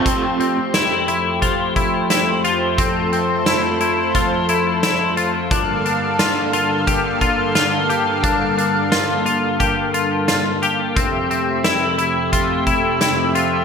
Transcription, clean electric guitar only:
X:1
M:4/4
L:1/8
Q:1/4=88
K:F
V:1 name="Clean electric guitar"
C C E E F E E F | C C E E F E E F | D D F F G F F G | D D F F G F F G |
C C E E F E E F |]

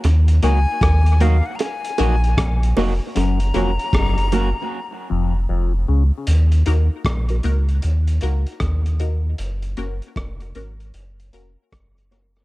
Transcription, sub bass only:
X:1
M:4/4
L:1/16
Q:"Swing 16ths" 1/4=77
K:Ebm
V:1 name="Sub bass" clef=bass
E,,2 D,, z E,,3 z3 B,,,2 B,,,2 F,,, z | G,,,2 F,,, z G,,,3 z3 F,,,2 F,,,2 D,, z | E,,2 E,, z B,,,2 D,,2 E,,2 D,, z E,,4 | G,,,2 G,,, z F,,,2 A,,,2 G,,,2 F,,, z G,,,4 |]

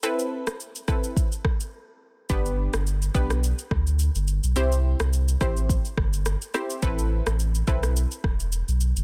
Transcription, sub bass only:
X:1
M:4/4
L:1/16
Q:"Swing 16ths" 1/4=106
K:Am
V:1 name="Sub bass" clef=bass
z16 | G,,,3 G,,,3 B,,,3 z D,,3 G,,,2 B,,, | C,,3 C,,3 A,,,3 z G,,,3 z3 | A,,,3 A,,,3 B,,,3 z E,,,3 B,,,2 G,,, |]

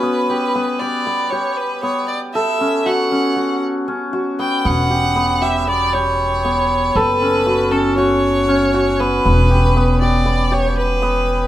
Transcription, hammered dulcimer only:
X:1
M:9/8
L:1/8
Q:3/8=78
K:Edor
V:1 name="Hammered dulcimer"
B, G B, G B, G2 B,2 | A C F C F2 C F B, | B, G B, G B, G2 B,2 | A C F C F2 C F B, |
B, G B, G B, G2 B,2 |]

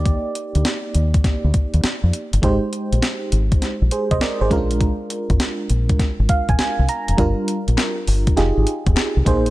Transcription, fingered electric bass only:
X:1
M:4/4
L:1/16
Q:"Swing 16ths" 1/4=101
K:Bbmix
V:1 name="Fingered electric bass" clef=bass
E,, z2 D,, z2 E,,2 z D,, z E,, z F,, z G,,, | A,,, z2 B,,, z2 A,,,2 z B,,, z C,, z A,,, B,,,2- | B,,, z2 A,,, z2 B,,,2 z A,,, z B,,, z C,, z F,,, | G,,, z2 B,,, z2 G,,,2 F,,, A,,, z F,,, z C,, B,,,2 |]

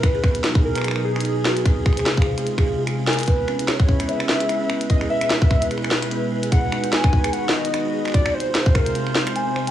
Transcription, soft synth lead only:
X:1
M:4/4
L:1/8
Q:"Swing 16ths" 1/4=148
K:C#dor
V:1 name="Soft synth lead"
B2 z A2 G2 F | _A6 z ^A | B2 c2 e3 z | d e3 z4 |
f2 g2 f d3 | =d =c2 A2 z3 |]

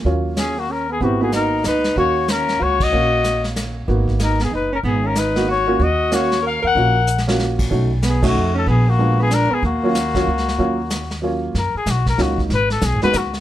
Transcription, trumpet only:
X:1
M:3/4
L:1/8
Q:"Swing" 1/4=188
K:Ebm
V:1 name="Trumpet"
z2 A G B A | G A B2 c2 | d2 B2 d e- | e3 z3 |
z2 B A c B | A B c2 d2 | e2 d2 f g- | g3 z3 |
z2 A ^F2 =A | A G2 A B A | G6- | G4 z2 |
B A G B G z | c =A _A c G z |]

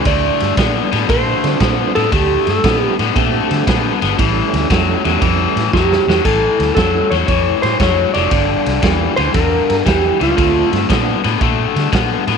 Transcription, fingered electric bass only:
X:1
M:4/4
L:1/8
Q:"Swing" 1/4=116
K:Dm
V:1 name="Fingered electric bass" clef=bass
D,, G,, B,, A,, B,, D, B,, A,, | D,, G,, B,, A,, B,, D, B,, G,,, | A,,, D,, F,, E,, F,, A,, F,, E,, | A,,, D,, F,, E,, F,, A,, F,, F,,, |
G,,, C,, E,, D,, E,, G,, E,, ^C,, | D,, G,, B,, A,, B,, D, B,, A,, |]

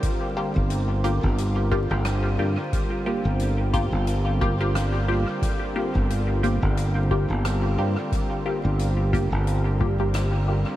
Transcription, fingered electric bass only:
X:1
M:4/4
L:1/16
Q:"Swing 16ths" 1/4=89
K:Gm
V:1 name="Fingered electric bass" clef=bass
z3 G,,,4 G,,,4 G,,,3 G,, z | z3 G,,,4 G,,,8 z | z3 G,,,4 G,,,4 G,,,3 G,, z | z3 G,,,4 G,,,8 z |]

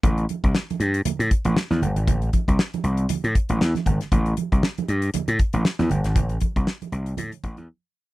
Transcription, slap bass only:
X:1
M:4/4
L:1/16
Q:"Swing 16ths" 1/4=118
K:Clyd
V:1 name="Slap bass" clef=bass
A,,,2 z C,, z2 G,,2 z A,, z A,,, z E,, G,,, ^G,,, | A,,,2 z C,, z2 C,,2 z A,, z A,,, E,, z ^G,,, z | A,,,2 z C,, z2 G,,2 z A,, z A,,, z E,, G,,, ^G,,, | A,,,2 z C,, z2 C,,2 A,, z A,,, E,, z4 |]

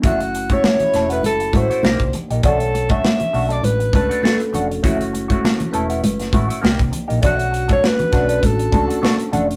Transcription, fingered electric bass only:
X:1
M:4/4
L:1/16
Q:"Swing 16ths" 1/4=100
K:F#phr
V:1 name="Fingered electric bass" clef=bass
F,,,4 z2 E,,,2 F,,,2 A,,, z =C,, C,, z _B,,, | B,,,4 z2 B,,,2 A,,,2 C,, z3 =F,,,2 | F,,,4 z2 E,,,2 F,,,2 A,,, z =C,, C,, z _B,,, | B,,,4 z2 B,,,2 A,,,2 C,, z3 =F,,,2 |]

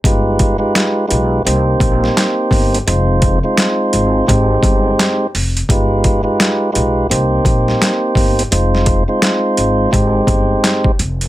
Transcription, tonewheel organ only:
X:1
M:4/4
L:1/16
Q:"Swing 16ths" 1/4=85
K:Cm
V:1 name="Tonewheel organ"
[A,EFG=B]3 [A,EFGB]3 [A,EFGB]2 [_B,CEGc]6- [B,CEGc] z | [A,CEFc]3 [A,CEFc] [A,CEFc]4 [A,CEGc]6 z2 | [A,EFG=B]3 [A,EFGB]3 [A,EFGB]2 [_B,CEGc]6- [B,CEGc] z | [A,CEFc]3 [A,CEFc] [A,CEFc]4 [A,CEGc]6 z2 |]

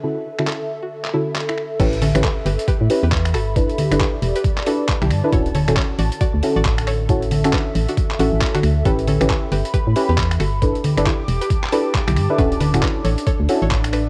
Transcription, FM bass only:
X:1
M:4/4
L:1/16
Q:"Swing 16ths" 1/4=136
K:D
V:1 name="FM bass" clef=bass
z16 | A,,,3 A,,, z2 G,,, z2 A,, z E,,3 G,,,2- | G,,, z2 G,,, z2 E,,, z6 B,,, G,, z | D,,,3 D,,, z2 A,,, z2 D,, z A,,,4- A,,,- |
A,,,3 D,,, z2 A,,, z3 A,,, A,,, z2 D,,2 | A,,,3 A,,, z2 G,,, z2 A,, z E,,3 G,,,2- | G,,, z2 G,,, z2 E,,, z6 B,,, G,, z | D,,,3 D,,, z2 A,,, z2 D,, z A,,,4- A,,, |]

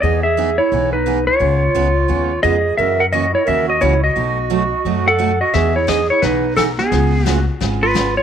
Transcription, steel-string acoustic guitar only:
X:1
M:4/4
L:1/16
Q:"Swing" 1/4=174
K:E
V:1 name="Steel-string acoustic guitar"
[E,B,DG]2 z2 [E,B,DG] z3 [E,B,DG]2 z2 [E,B,DG] z3 | [C,G,B,^EG]2 z2 [C,G,B,EG] z3 [C,G,B,EG]2 z2 [C,G,B,EG] z3 | [C,E,^A,CF]2 z2 [C,E,A,CF] z3 [C,E,A,CF]2 z2 [C,E,A,CF] z3 | [B,,F,A,DF]2 z2 [B,,F,A,DF] z3 [B,,F,A,DF]2 z2 [B,,F,A,DF] z3 |
[E,B,DG]2 z2 [E,B,DG] z3 [E,B,DG]2 z2 [E,B,DG] z3 | [C,G,B,^EG]2 z2 [C,G,B,EG] z3 [C,G,B,EG]2 z2 [C,G,B,EG] z3 |]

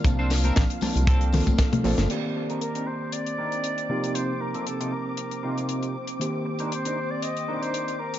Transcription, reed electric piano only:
X:1
M:4/4
L:1/8
Q:"Swing 16ths" 1/4=117
K:Cdor
V:1 name="Reed electric piano"
[F,B,CDa]3 [F,B,CDa]2 [F,B,CDA]2 [F,B,CDA] | [E,B,CGd]6- [E,B,CGd] [C,F,B,CEG]- | [C,F,B,CEG]8 | [E,B,CGc]8 |]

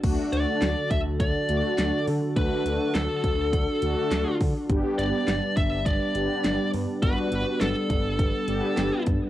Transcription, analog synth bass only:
X:1
M:4/4
L:1/16
Q:1/4=103
K:D
V:1 name="Analog synth bass" clef=bass
D,, z D,, z D,, z D,, D,, D,, z D,, z D,, z D, z | D,, z D,, z D,, z D,, D,, D,, z D,, z D,, z D, z | G,,, z G,,, z G,,, z G,,, G,,, G,,, z G,,, z G,,, z G,, z | G,,, z G,,, z G,,, z G,,, G,,, G,,, z G,,, z G,,, z G,, z |]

